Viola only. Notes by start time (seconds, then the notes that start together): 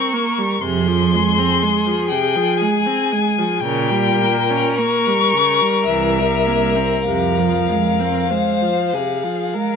Already playing: C4
0.14 A#3
0.38 G3
0.62 C3
0.88 F3
1.13 G#3
1.38 C4
1.63 G#3
1.87 F3
2.12 C3
2.36 F3
2.61 G#3
2.86 C4
3.12 G#3
3.38 F3
3.64 C#3
3.91 G3
4.22 A#3
4.50 C#4
4.78 A#3
5.07 G3
5.34 C#3
5.62 G3
5.90 E3
6.19 G3
6.46 A#3
6.76 C4
7.08 C3
7.39 F3
7.69 G#3
8.00 C4
8.31 G#3
8.61 F3
8.93 C3
9.24 F3
9.54 G#3